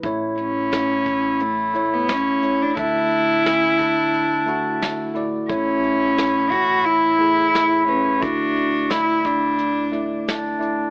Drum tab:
HH |xxxxxxxx|xxxxxxxx|xxxxxxxx|xxxxxxxx|
SD |--o---o-|--o---o-|--o---o-|--o---o-|
BD |o--o----|o--o----|o--o----|o--o----|